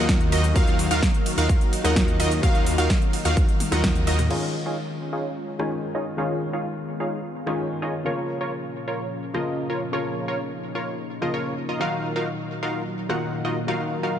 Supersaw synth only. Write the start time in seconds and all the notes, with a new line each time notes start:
Already playing: D#4 F4 F#4 A#4 F#5
0.32 D#4 F4 F#4 A#4 D#5
0.56 D#4 F4 F#4 A#4 F5
0.91 D#4 F4 F#4 A#4 F5
1.38 D#4 F4 F#4 A#4 F5
1.84 D#4 F4 F#4 A#4 F#5
2.20 D#4 F4 F#4 A#4 D#5
2.43 D#4 F4 F#4 A#4 F5
2.78 D#4 F4 F#4 A#4 F5
3.25 D#4 F4 F#4 A#4 F5
3.72 D#4 F4 F#4 A#4 F#5
4.07 D#4 F4 F#4 A#4 D#5
4.31 D#4 F4 G#4 C#5 F5
4.66 D#4 F4 G#4 C#5 F5
5.13 D#4 F4 G#4 C#5 F5
5.60 D#4 F4 G#4 C#5 G#5
5.95 D#4 F4 G#4 C#5 D#5
6.18 D#4 F4 G#4 C#5 F5
6.53 D#4 F4 G#4 C#5 F5
7.00 D#4 F4 G#4 C#5 F5
7.47 D#4 F4 G#4 C#5 G#5
7.82 D#4 F4 G#4 C#5 D#5
8.06 F4 A#4 C#5
8.41 F4 A#4 C#5
8.88 F4 A#4 C#5
9.35 F4 A#4 D#5
9.70 F4 A#4 C#5
9.93 F4 A#4 C#5
10.28 F4 A#4 C#5
10.75 F4 A#4 C#5
11.22 F4 A#4 D#5
11.34 F4 A#4 C#5
11.69 F4 A#4 D#5
11.81 D#4 F4 F#4 A#4 F5
12.16 D#4 F4 F#4 A#4 F5
12.63 D#4 F4 F#4 A#4 F5
13.10 D#4 F4 F#4 A#4 F#5
13.45 D#4 F4 F#4 A#4 D#5
13.68 D#4 F4 F#4 A#4 F5
14.03 D#4 F4 F#4 A#4 F5